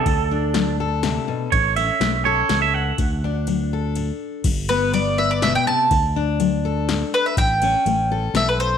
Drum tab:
CC |------|------|------|x-----|
RD |x-x-x-|xxx-x-|x-x-x-|xxx-x-|
SD |--o-o-|--o-o-|------|----o-|
BD |o-----|o-----|o-----|o-----|

CC |------|------|
RD |x-x-x-|xxx-x-|
SD |----o-|----o-|
BD |o-----|o-----|